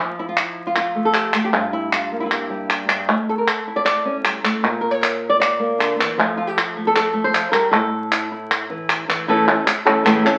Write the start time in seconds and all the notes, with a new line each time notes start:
Already playing: F3
0.19 E4
0.29 F4
0.37 E4, clap
0.67 F4
0.76 F4, clap
0.95 A3
1.05 A4
1.14 G4, clap
1.33 A3, clap
1.44 G4
1.53 G2 F4, clap
1.73 E4
1.93 F4, clap
2.12 A#3
2.20 E4 F4
2.26 E4
2.31 G4, clap
2.50 G3
2.70 clap
2.88 G2, clap
3.09 A3, clap
3.29 A4
3.38 A#4
3.48 A4, clap
3.67 E4
3.76 D5
3.85 D5, clap
4.05 C#4
4.25 G3, clap
4.44 A3, clap
4.63 A#2
4.81 A#4
4.91 C#5
5.01 A#4, clap
5.29 D5
5.40 D5, clap
5.59 A#3
5.79 D3, clap
5.99 E3, clap
6.17 F3 A3 F4 C5, clap
6.37 F4
6.47 G4
6.58 F4, clap
6.77 A3
6.87 A4
6.96 A4, clap
7.14 A3
7.24 C5
7.34 F3, clap
7.52 G3 A#4, clap
7.71 A2 A4
8.12 E4, clap
8.31 E4
8.51 clap
8.70 E3
8.89 clap
9.08 E3, clap
9.28 A2 C#3 E3 A3 C#4 A4
9.48 E3 A3 C#4, clap
9.66 muted nylon-string guitar stroke, clap
9.85 E3 A3 C#4 A4, clap
10.05 A2 C#3 E3 A3 C#4 A4, clap
10.25 E3 A3 C#4 A4, clap